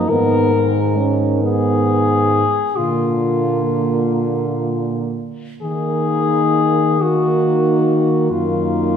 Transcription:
Already playing: D#4
0.09 G#2 D#3 B3 A#4
0.53 G#3
0.96 C#4
1.42 B3 G#4
2.77 A#2 D3 A#3 F4
5.62 D#3 A#3 G#4
7.01 D#3 A#3 F#4
8.31 F#2 D#3 A#3 F4

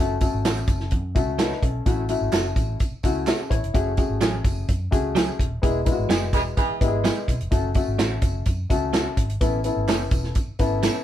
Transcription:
Already playing: A3
0.00 F#1 C#4 F#4 A4
0.21 A3 C#4 F#4 A4, kick, closed hi-hat, tambourine
0.33 G#1
0.45 A1 A3 C#4 F#4 A4, snare, clap, closed hi-hat, tambourine
0.57 closed hi-hat
0.67 F#1, kick, closed hi-hat, tambourine
0.80 snare
0.91 F#2, kick, closed hi-hat
1.15 C#2 A3 C#4 F#4 A4, kick, closed hi-hat, tambourine
1.39 A3 C#4 D#4 F#4 A4 B4, snare, clap, closed hi-hat, tambourine
1.52 snare
1.63 B1 C#4 A4, kick, closed hi-hat
1.86 A1 A3 C#4 E4 F#4, kick, closed hi-hat, tambourine
2.09 A3 C#4 E4 F#4, closed hi-hat, tambourine
2.21 G#1
2.32 F#1 A3 C#4 F#4 A4, snare, clap, closed hi-hat, tambourine
2.56 A1, kick, closed hi-hat, tambourine
2.79 kick, closed hi-hat, tambourine
2.92 muted fingered electric bass stroke
3.03 C#2 A3 C#4 E4 F#4, kick, closed hi-hat, tambourine
3.27 A3 C#4 F#4 G#4 A4 E5, snare, clap, closed hi-hat, tambourine
3.50 A1 E4 C#5, kick, closed hi-hat, tambourine
3.63 F1, closed hi-hat
3.74 F#1 A3 C#4 F#4 G#4, kick, closed hi-hat, tambourine
3.97 A3 C#4 F#4 G#4, kick, closed hi-hat, tambourine
4.09 G#1
4.21 A1 F#3 A3 C#4 G#4, snare, clap, closed hi-hat, tambourine
4.44 F#1, kick, closed hi-hat, tambourine
4.68 F#2, kick, closed hi-hat, tambourine
4.91 C#2 A3 C#4 F#4 G#4, kick, closed hi-hat, tambourine
5.15 F#3 A3 C#4 G#4, snare, clap, closed hi-hat, tambourine
5.39 D#1, kick, closed hi-hat
5.62 E1 G#3 B3 E4 G#4, kick, closed hi-hat, tambourine
5.85 G#3 B3 E4 F4, kick, closed hi-hat, tambourine
5.92 F#4
5.98 G#1
6.09 F#1 G#3 B3 E4 G#4, snare, clap, closed hi-hat, tambourine
6.33 E1 E3 G#3 B3 G#4, kick, closed hi-hat, tambourine
6.57 E3 G#3 B3 G#4, kick, closed hi-hat, tambourine
6.69 muted fingered electric bass stroke
6.81 G#1 G#3 B3 E4 G4, kick, closed hi-hat, tambourine
6.88 G#4
7.04 G#3 B3 E4 G#4, snare, clap, closed hi-hat, tambourine
7.28 B1, kick, closed hi-hat, tambourine
7.40 F1, closed hi-hat
7.51 F#1 A3 C#4 F#4 A4, kick, closed hi-hat, tambourine
7.74 A3 C#4 F#4 A4, kick, closed hi-hat, tambourine
7.87 G#1
7.99 A1 A3 C#4 F#4 A4, snare, clap, closed hi-hat, tambourine
8.22 F#1, kick, closed hi-hat, tambourine
8.46 F#2, kick, closed hi-hat, tambourine
8.70 C#2 A3 C#4 F#4 A4, kick, closed hi-hat, tambourine
8.93 A3 C#4 F#4 A4, snare, clap, closed hi-hat, tambourine
9.17 G#1, kick, closed hi-hat
9.30 closed hi-hat
9.41 A1 B3 C#4 E4 A4, kick, closed hi-hat, tambourine
9.64 B3 C#4 E4 A4, closed hi-hat, tambourine
9.76 G#1
9.88 F#1 E3 B3 C#4 A4, snare, clap, closed hi-hat, tambourine
10.11 E1, kick, closed hi-hat, tambourine
10.24 snare
10.35 kick, closed hi-hat, tambourine
10.48 muted fingered electric bass stroke
10.59 G#1 B3 C#4 E4 A4, kick, closed hi-hat, tambourine
10.83 E3 B3 C#4 A4, snare, clap, closed hi-hat, tambourine

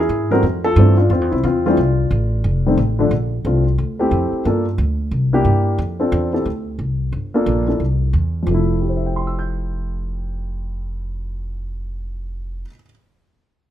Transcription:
0.00 E4 G#4
0.09 G#2
0.31 E3 G3 A3 C4 F#4 A#4
0.43 F2
0.64 F4 A4
0.76 G2 E3 G3 A3 C4
0.98 D4 F4
1.10 F2 C4 F4
1.21 E2
1.31 C2 C4 E4
1.43 E2 C4 F4
1.66 E3 G3 A3 C4 D4 F4
1.77 C2
2.11 A1
2.44 F1
2.66 D#3 G3 A3 C4
2.77 A1
2.99 D3 F3 A3 D4
3.11 A#1
3.45 C2 A3 C4 D4 F4
3.78 D2
3.99 A3 C4 E4 G4
4.11 F2
4.32 muted upright bass stroke
4.45 G2 A#3 D4 F4 A4
4.78 D2
5.11 C2
5.33 A#3 D4 E4 G4
5.45 G2
5.78 F2
6.00 C4 D4 F4 A4
6.12 E2
6.33 C4 E4 G4 A4
6.45 D2
6.79 C2
7.12 G1
7.34 A#3 D4 F4 A4
7.46 A#1
7.68 A#3 D4 E4 A4
7.80 C2
8.13 E2
8.43 F1 F2 F3
8.50 A3
8.54 E4
8.82 G4
8.89 C5
8.97 E5
9.06 G5
9.16 C6
9.27 E6
9.39 G6

